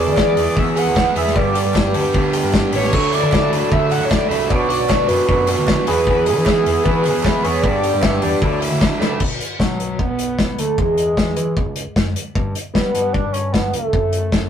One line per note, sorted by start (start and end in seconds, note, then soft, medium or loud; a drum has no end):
0.00 0.19 E2 medium
0.00 0.19 B2 medium
0.00 0.16 E3 medium
0.00 0.56 B3 medium
0.00 0.18 B3 medium
0.00 0.18 E4 medium
0.00 0.18 G#4 medium
0.00 1.41 G#4 loud
0.00 2.89 B4 medium
0.00 0.60 D5 loud
0.00 1.34 E5 medium
0.00 1.35 G#5 medium
0.00 1.34 E6 medium
0.07 0.35 E3 loud
0.17 0.38 E3 medium
0.17 0.37 B3 medium
0.17 0.36 E4 medium
0.17 0.36 G#4 medium
0.17 kick loud
0.17 snare loud
0.17 clap loud
0.37 0.46 E2 medium
0.37 0.56 E3 medium
0.37 0.56 B3 medium
0.37 0.56 E4 medium
0.37 0.57 G#4 medium
0.37 open hi-hat medium
0.56 0.96 E2 medium
0.56 0.96 B2 medium
0.56 0.87 E3 medium
0.56 0.77 E3 loud
0.56 0.76 B3 medium
0.56 0.75 E4 loud
0.56 0.75 G#4 loud
0.56 0.80 E5 loud
0.56 kick loud
0.76 1.17 E3 medium
0.76 1.17 B3 medium
0.76 1.16 E4 medium
0.76 1.16 G#4 medium
0.76 1.17 F#5 loud
0.76 clap medium
0.76 open hi-hat medium
0.86 1.05 E2 medium
0.96 1.36 E4 medium
0.96 kick loud
0.96 snare loud
0.96 clap medium
1.16 1.34 E2 medium
1.16 1.36 E3 medium
1.16 1.36 B3 medium
1.16 1.36 E4 medium
1.16 1.35 G#4 medium
1.16 1.37 E5 loud
1.16 open hi-hat medium
1.27 snare soft
1.34 1.63 G2 loud
1.34 1.75 G2 medium
1.34 1.75 D3 medium
1.34 1.56 G3 medium
1.34 1.55 B3 medium
1.34 1.56 D4 medium
1.34 2.69 G4 loud
1.34 1.54 G4 medium
1.34 2.91 D5 medium
1.34 1.95 D5 loud
1.34 2.91 G5 medium
1.34 kick loud
1.55 1.74 G3 medium
1.55 1.75 B3 medium
1.55 1.76 D4 medium
1.55 1.75 G4 medium
1.55 open hi-hat medium
1.65 1.93 G2 medium
1.74 1.96 G3 medium
1.74 1.94 B3 medium
1.74 1.95 D4 medium
1.74 1.93 G4 medium
1.74 kick loud
1.74 snare loud
1.74 clap loud
1.94 2.04 D2 loud
1.94 2.14 G3 medium
1.94 2.15 B3 medium
1.94 2.16 D4 medium
1.94 2.16 G4 medium
1.94 open hi-hat medium
2.14 2.42 D2 medium
2.14 2.54 G2 medium
2.14 2.54 D3 loud
2.14 2.36 G3 medium
2.14 2.36 B3 loud
2.14 2.37 D4 loud
2.14 2.35 G4 loud
2.14 kick loud
2.33 2.74 B3 medium
2.33 2.75 D4 medium
2.33 2.73 G4 medium
2.33 clap medium
2.33 open hi-hat loud
2.38 2.75 G3 medium
2.44 2.62 G2 medium
2.53 3.15 D4 medium
2.53 kick loud
2.53 snare loud
2.53 clap medium
2.73 2.92 A1 medium
2.73 2.93 G3 medium
2.73 2.93 B3 medium
2.73 2.94 D4 medium
2.73 2.92 G4 medium
2.73 3.11 C#5 medium
2.73 open hi-hat medium
2.84 snare soft
2.93 3.23 D2 loud
2.93 3.33 D3 medium
2.93 3.32 F#3 medium
2.93 3.15 A3 loud
2.93 3.15 D4 medium
2.93 3.13 E4 medium
2.93 4.46 A4 loud
2.93 4.49 A4 medium
2.93 4.49 E5 medium
2.93 5.85 F#5 medium
2.93 kick loud
2.93 crash loud
3.13 3.32 A3 medium
3.13 3.33 D4 medium
3.13 3.33 E4 medium
3.13 3.68 D5 loud
3.13 open hi-hat medium
3.23 3.50 D3 loud
3.32 3.70 F#3 medium
3.32 3.52 A3 medium
3.32 3.51 D4 medium
3.32 3.51 E4 medium
3.32 kick loud
3.32 snare loud
3.32 clap loud
3.50 3.61 D2 medium
3.50 4.49 F#3 medium
3.50 3.71 A3 medium
3.50 3.71 D4 medium
3.50 3.71 E4 medium
3.50 open hi-hat medium
3.71 4.11 D3 medium
3.71 4.01 D3 medium
3.71 4.11 F#3 medium
3.71 3.92 A3 medium
3.71 3.91 D4 loud
3.71 3.90 E4 loud
3.71 3.90 E5 loud
3.71 kick loud
3.91 4.31 A3 medium
3.91 4.30 D4 medium
3.91 4.29 E4 medium
3.91 4.06 F#5 loud
3.91 clap medium
3.91 open hi-hat medium
4.01 4.19 D2 medium
4.05 4.11 C#5 medium
4.09 4.49 D4 medium
4.09 4.29 D5 loud
4.09 kick loud
4.09 snare loud
4.09 clap medium
4.28 4.49 C2 medium
4.28 4.49 D4 medium
4.28 4.49 E4 medium
4.28 4.50 E5 medium
4.28 open hi-hat medium
4.32 4.50 A3 medium
4.49 4.78 B1 medium
4.49 4.89 B2 medium
4.49 4.88 F#3 medium
4.49 4.71 B3 medium
4.49 4.69 D4 loud
4.49 5.92 F#4 loud
4.49 4.68 F#4 loud
4.49 5.86 B4 medium
4.49 5.07 D5 loud
4.49 5.86 D5 medium
4.49 5.86 D6 medium
4.49 kick loud
4.69 4.89 B3 medium
4.69 4.89 D4 medium
4.69 4.89 F#4 medium
4.69 open hi-hat medium
4.80 5.07 B1 medium
4.89 5.27 F#3 medium
4.89 5.10 B3 medium
4.89 5.08 D4 medium
4.89 5.07 F#4 medium
4.89 kick loud
4.89 snare loud
4.89 clap loud
5.08 5.18 F#2 loud
5.08 5.87 F#3 medium
5.08 5.28 B3 medium
5.08 5.28 D4 medium
5.08 5.29 F#4 medium
5.08 5.45 B4 medium
5.08 open hi-hat medium
5.27 5.56 F#2 medium
5.27 5.67 B2 medium
5.27 5.68 F#3 medium
5.27 5.48 B3 medium
5.27 5.47 D4 loud
5.27 5.46 F#4 loud
5.27 kick loud
5.47 5.88 B3 medium
5.47 5.86 D4 medium
5.47 5.86 F#4 medium
5.47 clap medium
5.47 open hi-hat medium
5.58 5.76 D2 medium
5.67 5.87 D4 medium
5.67 kick loud
5.67 snare loud
5.67 clap loud
5.87 6.06 E2 medium
5.87 6.07 B2 medium
5.87 6.08 E3 medium
5.87 6.08 B3 medium
5.87 6.08 E4 loud
5.87 6.08 G#4 medium
5.87 7.70 G#4 loud
5.87 8.39 B4 medium
5.87 6.24 B4 loud
5.87 7.62 E5 medium
5.87 7.61 G#5 medium
5.87 7.62 E6 medium
5.87 open hi-hat medium
6.07 6.37 E2 loud
6.07 6.46 E2 loud
6.07 6.47 B2 medium
6.07 6.28 E3 loud
6.07 6.28 B3 medium
6.07 6.27 E4 medium
6.07 6.27 G#4 loud
6.07 kick loud
6.26 6.46 E3 medium
6.26 6.47 B3 medium
6.26 6.47 E4 medium
6.26 6.85 G#4 loud
6.26 6.49 G#4 medium
6.26 open hi-hat medium
6.37 6.64 E3 loud
6.46 6.68 E3 medium
6.46 6.68 B3 medium
6.46 6.67 E4 medium
6.46 6.66 G#4 medium
6.46 kick loud
6.46 snare loud
6.46 clap loud
6.64 6.75 E2 medium
6.64 7.62 E3 medium
6.64 6.86 G#4 medium
6.64 open hi-hat medium
6.68 6.86 E3 medium
6.68 6.86 B3 medium
6.68 6.86 E4 medium
6.84 7.25 E2 loud
6.84 7.25 B2 medium
6.84 7.15 E3 medium
6.84 7.06 E3 loud
6.84 7.05 B3 medium
6.84 7.04 E4 loud
6.84 7.03 G#4 loud
6.84 7.22 B4 loud
6.84 kick loud
7.04 7.45 E3 medium
7.04 7.44 B3 medium
7.04 7.44 E4 medium
7.04 7.43 G#4 medium
7.04 clap medium
7.04 open hi-hat medium
7.15 7.33 E2 medium
7.23 7.63 E4 medium
7.23 7.38 B4 medium
7.23 kick loud
7.23 snare loud
7.23 clap loud
7.38 7.45 B4 medium
7.43 7.63 E2 medium
7.43 7.63 E3 medium
7.43 7.63 B3 medium
7.43 7.63 E4 medium
7.43 7.63 G#4 medium
7.43 7.63 C#5 loud
7.43 open hi-hat medium
7.61 7.91 G2 medium
7.61 8.03 G2 medium
7.61 8.03 D3 medium
7.61 7.84 G3 medium
7.61 7.84 B3 loud
7.61 8.45 G4 medium
7.61 8.03 D5 loud
7.61 8.41 D5 medium
7.61 8.41 G5 medium
7.61 8.40 D6 medium
7.61 kick loud
7.66 7.83 D4 loud
7.66 7.82 G4 loud
7.83 8.01 G3 medium
7.83 8.02 B3 medium
7.83 8.03 D4 medium
7.83 8.03 G4 medium
7.83 open hi-hat medium
7.94 8.21 G2 medium
8.02 8.23 G3 medium
8.02 8.23 B3 medium
8.02 8.22 D4 medium
8.02 8.21 G4 medium
8.02 8.22 E5 loud
8.02 kick loud
8.02 snare loud
8.02 clap loud
8.22 8.32 E2 loud
8.22 8.42 G3 medium
8.22 8.42 B3 medium
8.22 8.41 D4 medium
8.22 8.41 G4 medium
8.22 8.59 D5 medium
8.22 open hi-hat medium
8.41 8.69 D2 medium
8.41 8.81 D3 medium
8.41 8.82 F#3 medium
8.41 8.62 A3 loud
8.41 8.61 D4 medium
8.41 8.61 E4 loud
8.41 8.97 F#4 medium
8.41 9.19 A4 medium
8.41 9.20 E5 medium
8.41 9.20 F#5 medium
8.41 9.19 D6 medium
8.41 kick loud
8.62 9.01 A3 medium
8.62 9.01 D4 medium
8.62 9.00 E4 medium
8.62 open hi-hat medium
8.71 8.89 D2 loud
8.81 9.20 D4 medium
8.81 kick loud
8.81 snare loud
8.81 clap loud
9.01 9.19 C#2 medium
9.01 9.20 A3 medium
9.01 9.20 D4 medium
9.01 9.19 E4 medium
9.01 snare medium
9.20 9.39 B1 medium
9.20 kick loud
9.20 crash loud
9.41 closed hi-hat medium
9.59 9.78 B2 medium
9.59 10.00 F#3 medium
9.59 kick loud
9.59 snare medium
9.79 10.07 B1 medium
9.79 closed hi-hat medium
9.99 10.61 B3 loud
9.99 kick loud
10.09 10.55 B1 medium
10.19 closed hi-hat medium
10.39 kick medium
10.39 snare medium
10.58 10.77 D2 medium
10.58 10.80 A3 medium
10.58 closed hi-hat medium
10.78 11.15 E2 medium
10.78 11.96 G#3 medium
10.78 kick loud
10.98 closed hi-hat medium
11.17 11.36 E2 medium
11.17 kick medium
11.17 snare loud
11.36 11.55 E3 medium
11.36 closed hi-hat medium
11.57 kick loud
11.65 11.84 C#2 medium
11.76 closed hi-hat medium
11.96 12.14 F#2 medium
11.96 kick medium
11.96 snare loud
12.16 closed hi-hat medium
12.35 12.54 G2 medium
12.35 kick loud
12.55 closed hi-hat medium
12.73 12.93 G3 medium
12.73 13.14 B3 medium
12.73 kick medium
12.73 snare medium
12.94 13.22 G2 medium
12.94 closed hi-hat medium
13.13 13.34 D4 loud
13.13 kick loud
13.25 13.70 G2 medium
13.32 13.54 C#4 loud
13.32 closed hi-hat medium
13.52 13.73 B3 medium
13.52 kick medium
13.52 snare medium
13.71 13.92 C#2 medium
13.71 14.49 A3 medium
13.71 closed hi-hat medium
13.93 14.30 F#2 medium
13.93 kick loud
14.13 closed hi-hat medium
14.32 14.49 F#2 medium
14.32 kick medium
14.32 snare medium